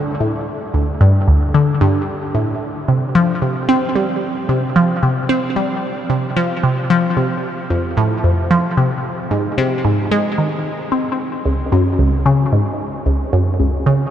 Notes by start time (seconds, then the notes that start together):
Already playing: D3
0.20 A2
0.74 D2
1.01 G2
1.28 D2
1.54 D3
1.81 G2
2.35 A2
2.88 C3
3.15 F3
3.42 C3
3.69 C4
3.96 G3
4.49 C3
4.76 F3
5.03 C3
5.29 C4
5.56 G3
6.10 C3
6.37 F3
6.63 C3
6.90 F3
7.17 C3
7.70 F2
7.97 A2
8.24 F2
8.51 F3
8.77 C3
9.31 G#2
9.58 C3
9.85 G#2
10.11 G#3
10.38 D#3
10.92 C4
11.45 C#2
11.72 F#2
11.99 C#2
12.26 C#3
12.53 G#2
13.06 C#2
13.33 F#2
13.60 C#2
13.86 C#3